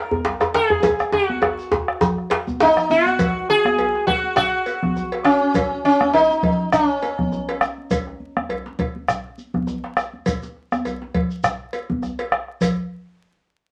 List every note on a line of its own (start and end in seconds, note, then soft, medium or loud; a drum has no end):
0.00 0.50 A#4 medium
0.11 bombo low medium
0.11 high conga medium
0.11 djembe tone medium
0.11 djembe bass medium
0.24 djembe slap medium
0.24 djembe bass medium
0.40 bombo rim medium
0.40 cowbell soft
0.40 djembe slap medium
0.40 djembe tone medium
0.40 shekere soft
0.54 1.13 G#4 loud
0.54 bombo rim soft
0.54 djembe slap medium
0.70 djembe bass medium
0.83 bombo low medium
0.83 cowbell medium
0.83 djembe slap soft
0.83 djembe tone loud
0.83 low conga medium
0.83 djembe bass medium
0.83 shekere medium
0.99 bombo rim medium
0.99 high conga soft
0.99 shekere soft
1.12 1.98 F#4 medium
1.12 bombo rim soft
1.12 djembe tone medium
1.12 high conga soft
1.29 bombo rim soft
1.29 djembe tone soft
1.29 high conga medium
1.42 bombo rim loud
1.42 cowbell soft
1.42 djembe tone medium
1.42 djembe bass medium
1.59 djembe slap soft
1.59 shekere soft
1.72 bombo low medium
1.72 djembe tone loud
1.72 high conga soft
1.72 shekere soft
1.88 bombo rim medium
1.88 djembe slap soft
2.01 djembe tone loud
2.01 low conga medium
2.01 djembe bass medium
2.01 shekere medium
2.18 bombo rim soft
2.30 cowbell soft
2.30 djembe slap loud
2.47 bombo low medium
2.47 djembe slap soft
2.47 djembe tone medium
2.47 high conga medium
2.47 shekere soft
2.60 2.89 D#4 medium
2.60 djembe slap soft
2.60 djembe slap medium
2.60 djembe bass medium
2.60 shekere soft
2.77 bombo rim medium
2.77 djembe slap medium
2.77 low conga soft
2.90 3.49 F#4 loud
2.90 high conga medium
2.90 shekere soft
3.06 bombo rim soft
3.06 djembe slap soft
3.06 high conga soft
3.06 shekere soft
3.19 bombo rim soft
3.19 bombo low medium
3.19 cowbell medium
3.19 djembe slap soft
3.19 high conga soft
3.19 low conga medium
3.19 djembe bass medium
3.19 shekere medium
3.36 djembe tone medium
3.49 4.06 G#4 loud
3.49 high conga soft
3.65 bombo rim medium
3.65 high conga medium
3.78 cowbell medium
3.78 djembe tone medium
3.78 djembe bass medium
3.95 djembe slap medium
3.95 high conga soft
4.07 4.35 F#4 medium
4.07 bombo low loud
4.07 cowbell medium
4.07 low conga medium
4.23 high conga soft
4.36 5.21 F#4 loud
4.36 bombo rim loud
4.36 djembe tone medium
4.36 djembe bass medium
4.36 shekere medium
4.54 djembe slap soft
4.66 cowbell soft
4.66 high conga soft
4.66 shekere soft
4.83 bombo rim soft
4.83 bombo low medium
4.83 djembe slap soft
4.83 high conga medium
4.83 djembe tone medium
4.83 low conga medium
4.97 djembe bass medium
4.97 shekere soft
5.12 bombo rim soft
5.12 cowbell medium
5.12 djembe slap medium
5.24 5.84 C#4 medium
5.24 bombo rim medium
5.24 high conga soft
5.24 djembe tone medium
5.24 shekere soft
5.42 high conga soft
5.54 bombo rim soft
5.54 bombo low medium
5.54 cowbell medium
5.54 djembe slap soft
5.54 high conga soft
5.54 low conga loud
5.54 djembe bass medium
5.54 shekere medium
5.72 djembe tone medium
5.84 6.13 C#4 medium
5.84 high conga soft
6.01 bombo rim medium
6.01 high conga medium
6.13 6.69 D#4 medium
6.13 cowbell medium
6.13 djembe tone medium
6.13 djembe bass medium
6.31 djembe slap medium
6.31 high conga soft
6.43 bombo low loud
6.43 cowbell medium
6.43 low conga medium
6.72 7.57 C#4 medium
6.72 bombo rim loud
6.72 djembe tone medium
6.72 djembe bass medium
6.72 shekere medium
7.02 cowbell medium
7.02 high conga soft
7.02 shekere soft
7.18 bombo rim soft
7.18 bombo low medium
7.18 high conga medium
7.18 low conga medium
7.32 djembe bass medium
7.32 shekere soft
7.49 cowbell medium
7.49 djembe slap medium
7.61 bombo rim loud
7.61 high conga soft
7.61 djembe tone medium
7.61 shekere soft
7.78 high conga soft
7.91 bombo rim soft
7.91 bombo low loud
7.91 cowbell medium
7.91 djembe slap soft
7.91 high conga soft
7.91 low conga medium
7.91 djembe bass medium
7.91 shekere medium
8.07 djembe tone medium
8.20 high conga soft
8.37 bombo rim medium
8.37 high conga medium
8.49 cowbell medium
8.49 djembe tone loud
8.49 djembe bass medium
8.66 djembe slap medium
8.66 high conga soft
8.79 bombo low loud
8.79 cowbell soft
8.79 low conga medium
8.96 high conga soft
9.08 bombo rim loud
9.08 djembe tone medium
9.08 djembe bass medium
9.08 shekere medium
9.25 djembe slap soft
9.38 high conga soft
9.38 shekere soft
9.54 bombo rim soft
9.54 bombo low medium
9.54 djembe slap soft
9.54 high conga medium
9.54 djembe tone medium
9.54 low conga medium
9.67 djembe bass medium
9.67 shekere soft
9.84 bombo rim soft
9.84 djembe slap medium
9.97 bombo rim loud
9.97 high conga soft
9.97 djembe tone medium
9.97 shekere soft
10.13 high conga soft
10.26 bombo rim soft
10.26 bombo low medium
10.26 cowbell medium
10.26 djembe slap soft
10.26 low conga medium
10.26 djembe bass medium
10.26 shekere medium
10.43 high conga soft
10.43 djembe tone medium
10.43 shekere soft
10.56 djembe slap soft
10.72 bombo rim medium
10.72 high conga medium
10.72 shekere soft
10.85 cowbell soft
10.85 djembe tone medium
10.85 djembe bass medium
10.85 shekere soft
11.02 djembe slap medium
11.02 high conga soft
11.14 bombo low loud
11.14 cowbell medium
11.14 low conga medium
11.31 shekere soft
11.44 bombo rim loud
11.44 djembe tone medium
11.44 djembe bass medium
11.44 shekere medium
11.60 djembe slap soft
11.73 cowbell medium
11.73 high conga soft
11.73 shekere soft
11.89 bombo low medium
11.89 djembe slap soft
11.89 djembe tone medium
11.89 high conga medium
11.89 low conga medium
12.02 bombo rim soft
12.02 djembe bass medium
12.02 shekere soft
12.19 cowbell medium
12.19 djembe slap medium
12.19 high conga soft
12.32 bombo rim loud
12.32 djembe tone medium
12.48 bombo rim soft
12.61 bombo low medium
12.61 cowbell medium
12.61 low conga medium
12.61 djembe bass medium
12.61 shekere medium